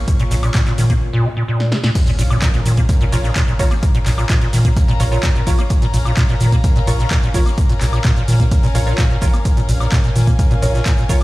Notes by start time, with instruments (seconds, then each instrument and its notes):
Already playing: ambient pad C#3 A#3 F4 C#5, string section C#4 A#4 F5 C#6
0.08 kick, closed hi-hat, shaker
0.19 acid bass A#2, closed hi-hat, shaker
0.31 analog synth bass A#1, acid bass A#2, closed hi-hat, open hi-hat, shaker
0.43 acid bass A#2, closed hi-hat, high woodblock, shaker
0.54 acid bass A#2, kick, snare, clap, closed hi-hat, shaker
0.66 acid bass A#2, snare, clap, closed hi-hat, shaker
0.78 analog synth bass A#2, acid bass D#3, snare, closed hi-hat, open hi-hat, shaker
0.90 acid bass A#3, kick, closed hi-hat, shaker
1.13 acid bass A#2
1.25 acid bass C#3
1.37 acid bass A#2
1.48 acid bass A#2
1.60 snare
1.72 acid bass C#3, snare
1.84 acid bass A#2, snare
1.95 string section C#4, kick, closed hi-hat, crash, impact, shaker
2.07 acid bass A#2, closed hi-hat, shaker
2.18 analog synth bass A#1, acid bass A#2, string section F5, closed hi-hat, open hi-hat, shaker
2.30 acid bass A#2, high woodblock, shaker
2.41 acid bass A#2, string section A#4, kick, snare, clap, closed hi-hat, shaker
2.53 acid bass A#2, snare, closed hi-hat, shaker
2.61 string section A#5
2.65 analog synth bass A#2, acid bass D#3, closed hi-hat, open hi-hat, shaker
2.77 acid bass A#3, kick, closed hi-hat, shaker
2.89 kick, closed hi-hat, shaker
3.01 acid bass A#2, closed hi-hat, shaker
3.12 analog synth bass A#1, acid bass A#2, synth stab F4 A#4 C#5, closed hi-hat, open hi-hat, shaker
3.24 acid bass A#2, snare, shaker
3.35 acid bass A#2, kick, snare, clap, closed hi-hat, shaker
3.48 acid bass A#2, closed hi-hat, shaker
3.59 analog synth bass A#1, acid bass D#3, synth stab F4 A#4 C#5, kick, open hi-hat, shaker
3.71 acid bass A#3, closed hi-hat, high woodblock, shaker
3.83 kick, closed hi-hat, shaker
3.94 acid bass A#2, closed hi-hat, shaker
4.06 analog synth bass A#1, acid bass A#2, clap, closed hi-hat, open hi-hat, shaker
4.18 acid bass A#2, closed hi-hat, high woodblock, shaker
4.30 acid bass A#2, kick, snare, clap, closed hi-hat, shaker
4.41 acid bass A#2, snare, closed hi-hat, shaker
4.53 analog synth bass A#2, acid bass D#3, snare, closed hi-hat, open hi-hat, shaker
4.65 acid bass A#3, kick, closed hi-hat, shaker
4.76 kick, closed hi-hat, shaker
4.88 acid bass A#2, closed hi-hat, shaker
5.00 analog synth bass A#1, acid bass A#2, synth stab F4 A#4 C#5, closed hi-hat, open hi-hat, shaker
5.12 acid bass A#2, synth stab F4 A#4 C#5, shaker
5.23 acid bass A#2, kick, snare, clap, closed hi-hat, shaker
5.35 acid bass A#2, shaker
5.46 analog synth bass A#1, acid bass D#3, synth stab F4 A#4 C#5, kick, closed hi-hat, open hi-hat, shaker
5.59 acid bass A#3, closed hi-hat, high woodblock, shaker
5.70 kick, closed hi-hat, shaker
5.82 acid bass A#2, closed hi-hat, shaker
5.93 analog synth bass A#1, acid bass A#2, closed hi-hat, open hi-hat, shaker
6.05 acid bass A#2, high woodblock, shaker
6.17 acid bass A#2, kick, snare, clap, closed hi-hat, shaker
6.29 acid bass A#2, snare, closed hi-hat, shaker
6.40 analog synth bass A#2, acid bass D#3, closed hi-hat, open hi-hat, shaker
6.52 acid bass A#3, kick, closed hi-hat, shaker
6.63 kick, closed hi-hat, shaker
6.76 acid bass A#2, closed hi-hat, shaker
6.87 analog synth bass A#1, acid bass A#2, synth stab F4 A#4 C#5, closed hi-hat, open hi-hat, shaker
6.99 acid bass A#2, snare, shaker
7.11 acid bass A#2, kick, snare, clap, closed hi-hat, shaker
7.23 acid bass A#2, closed hi-hat, shaker
7.34 analog synth bass A#1, acid bass D#3, synth stab F4 A#4 C#5, kick, open hi-hat, shaker
7.46 acid bass A#3, closed hi-hat, high woodblock, shaker
7.58 kick, closed hi-hat, shaker
7.69 acid bass A#2, closed hi-hat, shaker
7.81 analog synth bass A#1, acid bass A#2, clap, closed hi-hat, open hi-hat, shaker
7.92 acid bass A#2, closed hi-hat, high woodblock, shaker
8.05 acid bass A#2, kick, snare, clap, closed hi-hat, shaker
8.16 acid bass A#2, snare, closed hi-hat, shaker
8.28 analog synth bass A#2, acid bass D#3, closed hi-hat, open hi-hat, shaker
8.40 acid bass A#3, kick, closed hi-hat, shaker
8.51 kick, closed hi-hat, shaker
8.63 acid bass A#2, open hi-hat, shaker
8.75 analog synth bass A#1, acid bass A#2, synth stab F4 A#4 C#5, closed hi-hat, open hi-hat, shaker
8.87 acid bass A#2, synth stab F4 A#4 C#5, shaker
8.98 acid bass A#2, kick, snare, clap, closed hi-hat, shaker
9.10 acid bass A#2, shaker
9.21 analog synth bass A#1, acid bass D#3, synth stab F4 A#4 C#5, kick, closed hi-hat, open hi-hat, shaker
9.34 acid bass A#3, closed hi-hat, high woodblock, shaker
9.45 kick, closed hi-hat, shaker
9.57 acid bass A#2, closed hi-hat, shaker
9.69 analog synth bass A#1, acid bass A#2, closed hi-hat, open hi-hat, shaker
9.80 acid bass A#2, high woodblock, shaker
9.92 acid bass A#2, kick, snare, clap, closed hi-hat, shaker
10.04 acid bass A#2, snare, closed hi-hat, shaker
10.10 string section G#5
10.16 analog synth bass A#2, acid bass D#3, closed hi-hat, open hi-hat, shaker
10.27 acid bass A#3, kick, closed hi-hat, shaker
10.39 kick, closed hi-hat, shaker
10.51 acid bass A#2, closed hi-hat, shaker
10.62 analog synth bass A#1, acid bass A#2, synth stab F4 A#4 C#5, closed hi-hat, open hi-hat, shaker
10.74 acid bass A#2, snare, shaker
10.85 acid bass A#2, kick, snare, clap, closed hi-hat, shaker
10.97 acid bass A#2, closed hi-hat, shaker
11.09 analog synth bass A#1, acid bass D#3, synth stab F4 A#4 C#5, kick, open hi-hat, shaker